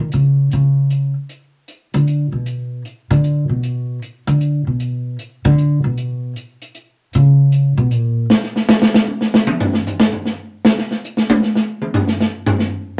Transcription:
0.00 D#3
0.12 C#3, closed hi-hat
0.51 C#3, closed hi-hat
0.90 closed hi-hat
1.29 closed hi-hat
1.68 closed hi-hat
1.94 D3, closed hi-hat
2.07 closed hi-hat
2.32 B2
2.46 closed hi-hat
2.85 closed hi-hat
3.11 D3, closed hi-hat
3.24 closed hi-hat
3.49 B2
3.63 closed hi-hat
4.02 closed hi-hat
4.27 D3, closed hi-hat
4.41 closed hi-hat
4.67 B2
4.80 closed hi-hat
5.19 closed hi-hat
5.45 D3, closed hi-hat
5.58 closed hi-hat
5.84 B2
5.98 closed hi-hat
6.36 closed hi-hat
6.62 closed hi-hat
6.75 closed hi-hat
7.13 C#3, closed hi-hat
7.52 closed hi-hat
7.77 B2
7.91 A#2, closed hi-hat
8.30 snare
8.43 snare
8.56 snare
8.69 snare, hi-hat pedal
8.82 snare
8.94 snare
9.08 high tom
9.21 snare
9.34 snare
9.47 mid tom
9.60 floor tom
9.74 snare
9.87 floor tom, hi-hat pedal
10.00 snare
10.12 floor tom
10.26 snare
10.65 snare
10.78 snare
10.91 snare
11.04 hi-hat pedal
11.17 snare
11.30 high tom
11.42 snare
11.55 snare
11.82 mid tom
11.94 floor tom
12.08 snare
12.20 snare, hi-hat pedal
12.46 floor tom
12.59 snare

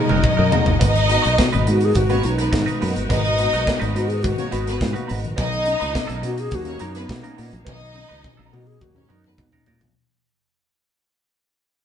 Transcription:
Already playing: F#3 C#4 D#4 F#4 A#4 D#5
0.09 F#1 D#4 F#4 A#4, mid tom
0.24 F#3, muted clean electric guitar stroke, kick, mid tom
0.37 F#2 D#4 F#4 A#4
0.52 G#3 A#3 D#4 F#4 A#4, floor tom
0.66 G1 A#3 D#4, muted clean electric guitar stroke, floor tom
0.79 G#1 G#2 D#3 G#3 D#4 F#4 A#4 B4 D#5, kick, closed hi-hat
0.94 muted clean electric guitar stroke, closed hi-hat
1.09 B3 F#4, muted clean electric guitar stroke, closed hi-hat
1.22 B1 D#4 F#4 C#5, closed hi-hat
1.38 B3 F#4, muted clean electric guitar stroke, kick, snare
1.53 G#1 G#2 D#3 D#4 F#4 B4, closed hi-hat
1.66 G#2 B3 D#4 F#4 B4, closed hi-hat
1.71 F#4
1.81 muted clean electric guitar stroke, closed hi-hat
1.85 G#4
1.95 G#1 G#2 D#3 F#4, muted clean electric guitar stroke, kick, closed hi-hat
2.09 A#3 B3 C#4 D#4 F#4 B4 C#5, closed hi-hat
2.23 B1 B3 D#4 F#4, muted clean electric guitar stroke, closed hi-hat
2.38 B3 B4, muted clean electric guitar stroke, closed hi-hat
2.51 G#2 D#3, muted clean electric guitar stroke, kick, snare
2.66 D#4 F#4 B4, closed hi-hat
2.80 F#2 A#3 B3 D#4 F#4 B4, open hi-hat
2.94 G1 B3 F#4, muted clean electric guitar stroke, closed hi-hat
3.09 G#1 G#2 D#3 D#4 F#4 B4 D#5, kick, closed hi-hat
3.23 muted clean electric guitar stroke, closed hi-hat
3.38 B3 F#4, muted clean electric guitar stroke, closed hi-hat
3.53 B1 D#4 F#4 C#5, closed hi-hat
3.66 B3 F#4, muted clean electric guitar stroke, kick, snare
3.80 G#1 G#2 D#3 D#4 F#4 B4, closed hi-hat
3.95 G#2 B3 D#4 F#4 B4, closed hi-hat
4.08 G#4, muted clean electric guitar stroke, closed hi-hat
4.23 G#2 D#3 F#4, muted clean electric guitar stroke, kick, closed hi-hat
4.38 A#3 B3 C#4 F#4 C#5, muted clean electric guitar stroke, closed hi-hat
4.50 G#1 B3 D#4 F#4 B4, closed hi-hat
4.66 B3 B4, muted clean electric guitar stroke, snare, closed hi-hat
4.78 G#2, muted clean electric guitar stroke, kick
4.82 snare
4.93 A#3 B3 D#4 F#4 B4, closed hi-hat
5.07 G#1 D#4 F#4 B4, open hi-hat
5.22 A#1 G#2 D#3, muted clean electric guitar stroke, closed hi-hat
5.36 B1 B2 F#3 A#3 B3 D#4 A#4 D#5, kick, closed hi-hat
5.51 muted clean electric guitar stroke, closed hi-hat
5.66 C#4 D#4, muted clean electric guitar stroke, closed hi-hat
5.80 C#2 B3 D#4 B4, closed hi-hat
5.93 C#4 D#4, muted clean electric guitar stroke, kick, snare
6.07 B1 B2 F#3 B3 D#4 A#4, closed hi-hat
6.21 B2 B3 C#4 D#4 A#4, closed hi-hat
6.26 F#4
6.37 G#4, muted clean electric guitar stroke, closed hi-hat
6.51 D#2 B2 F#3 F#4, muted clean electric guitar stroke, kick, closed hi-hat
6.64 A#3 C#4 D#4 C#5, muted clean electric guitar stroke, closed hi-hat
6.79 F#2 B3 C#4 D#4 A#4, closed hi-hat
6.94 B3 B4, muted clean electric guitar stroke, snare, closed hi-hat
7.08 B2, muted clean electric guitar stroke, kick, snare
7.22 A#3 B3 C#4 D#4 A#4, closed hi-hat
7.37 A#2 B3 D#4 A#4, open hi-hat
7.51 A#1 B2 F#3, muted clean electric guitar stroke, closed hi-hat
7.65 B1 B2 F#3 B3 D#4 A#4 D#5, kick, high tom
7.81 muted clean electric guitar stroke
7.95 C#4 D#4, muted clean electric guitar stroke, high tom
8.09 C#2 B3 D#4 B4
8.24 C#4 D#4, kick, mid tom
8.37 B1 B2 F#3 B3 D#4 A#4
8.52 B2 B3 C#4 D#4 F#4 A#4, mid tom
8.67 G#4
8.80 D#2 B2 F#3 F#4, muted clean electric guitar stroke, kick, mid tom
8.94 A#3 C#4 D#4 C#5, muted clean electric guitar stroke, mid tom
9.09 F#2 B3 C#4 D#4 A#4, mid tom
9.24 B3 B4, muted clean electric guitar stroke, mid tom
9.38 B2, muted clean electric guitar stroke, kick, floor tom
9.52 A#3 B3 C#4 D#4 A#4, floor tom
9.66 A#2 B3 D#4 A#4, floor tom
9.81 A#1 B2 F#3, muted clean electric guitar stroke, floor tom

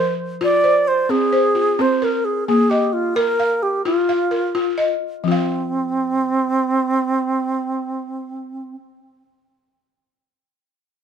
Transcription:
Already playing: F3 A#4 C5
0.41 F4 D5
0.64 C5
0.88 C5
1.09 C4 G#4
1.32 C5
1.55 F4
1.79 C4 C5
2.02 A#4
2.25 G#4
2.48 A#3 G#4
2.70 G4 D#5
2.93 F4
3.16 A#4
3.40 F5
3.63 G4
3.85 F4
4.09 F5
4.31 A#4
4.55 F4
4.78 D#5
5.24 F3 C4 F4
5.32 F5

